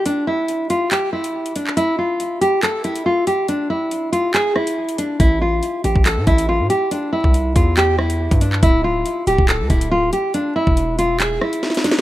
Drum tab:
HH |x-----------x-----x-----x--------x-----x--x-----|x-----------x-----x-----x-----x--x--------x-----|x-----------x-----x-----x--------x-----x--x-----|x-----------x-----x-----x-----x--x--------x-----|
CP |------------------------x--------------------x--|------------------------x-----------------------|------------------------x-----------------------|------------------------x-----------------------|
SD |------------------------------------------------|------------------------------------------------|------------------------------r-----------------|------------------------------------------------|
BD |------------------------------------------------|------------------------------------------------|------------------------------------------------|o--------------------o--------o-----------------|

HH |x-----------x-----x-----x--------x-----x--x-----|x-----------x-----x-----x-----x--x--------x-----|x-----------x-----x-----x--------x-----x--x-----|
CP |------------------------x--------------------x--|------------------------x-----------------------|------------------------x-----------------------|
SD |------------------------------r-----------------|------------------------------------------------|------------------------------r-----o-o-o-o-o---|
BD |---------o--------o--------------------o--------|o--------------------o--------o-----------------|---------o--------------------------------------|